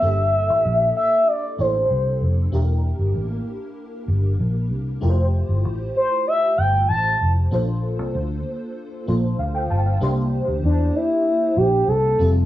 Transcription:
<<
  \new Staff \with { instrumentName = "Analog synth lead" } { \time 4/4 \key c \mixolydian \tempo 4 = 96 e''4. e''8 d''8 c''4 r8 | r1 | r4. c''8 e''8 g''8 a''8. r16 | r1 |
r4 d'8 e'4 g'8 a'8. r16 | }
  \new Staff \with { instrumentName = "FM electric piano" } { \time 4/4 \key c \mixolydian << { r1 | r1 | r1 | r2. f''16 g''16 a''16 f''16~ |
f''16 r2. r8. | } \\ { <bes d' e' g' a'>2~ <bes d' e' g' a'>8 <bes d' e' g' a'>4. | <bes d' e' g' bes'>1 | <a e' f' g' bes' c''>1 | <bes d' f' a' c''>2~ <bes d' f' a' c''>8 <bes d' f' a' c''>4. |
<bes d' e' g' c''>2.~ <bes d' e' g' c''>8 <g c' e' f' a'>8 | } >> }
  \new Staff \with { instrumentName = "Fingered electric bass" } { \clef bass \time 4/4 \key c \mixolydian g,,8. a,,16 bes,,8 r4 a,,8 c,8 f,,8 | e,,8. g,,16 a,,8 r4 g,,8 bes,,8 c,8 | f,,8. g,,16 a,,8 r4 g,,8 a,,8 f,,8 | bes,,8. c,16 d,8 r4 bes,,8 d,8 g,,8 |
c,8. d,16 e,8 r4 bes,,8 c,8 f,,8 | }
>>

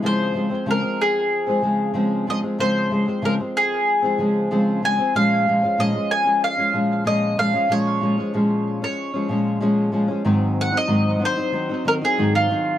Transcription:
<<
  \new Staff \with { instrumentName = "Mandolin" } { \time 4/4 \key des \major \tempo 4 = 94 c''4 bes'8 aes'2 ees''8 | c''4 bes'8 aes'2 aes''8 | f''4 ees''8 aes''8 f''4 ees''8 f''8 | des''4.~ des''16 des''4.~ des''16 r8 |
r8 ges''16 ees''8. c''4 bes'16 aes'8 f'8. | }
  \new Staff \with { instrumentName = "Nylon-string guitar" } { \clef bass \time 4/4 \key des \major <des f aes c'>8 <des f aes c'>16 <f aes c'>16 <des f aes c'>16 <f aes c'>4 <f aes c'>16 <des f aes c'>8 <des f aes c'>8 <des f aes c'>16 <f aes c'>16 | <des f aes c'>8 <des f aes c'>16 <f aes c'>16 <des f aes c'>16 <f aes c'>4 <f aes c'>16 <des f aes c'>8 <des f aes c'>8 <des f aes c'>16 <f aes c'>16 | <bes, f aes des'>8 <bes, f aes des'>16 <f aes des'>16 <bes, f aes des'>16 <f aes des'>8 <f aes des'>8 <f aes des'>16 <bes, f aes des'>8 <bes, f aes des'>8 <bes, f aes des'>16 <f aes des'>16 | <bes, f aes des'>8 <bes, f aes des'>16 <f aes des'>16 <bes, f aes des'>8. <f aes des'>8 <f aes des'>16 <bes, f aes des'>8 <bes, f aes des'>8 <bes, f aes des'>16 <f aes des'>16 |
<aes, ees ges c' ees'>8. <ges c' ees'>16 <aes, ees ges c' ees'>8 <ees ges c' ees'>16 <ges c' ees'>16 <ees ges c' ees'>16 <ges c' ees'>16 <ees ges c' ees'>16 <ges c' ees'>16 <aes, ees ges c' ees'>8 <ees ges c' ees'>8 | }
>>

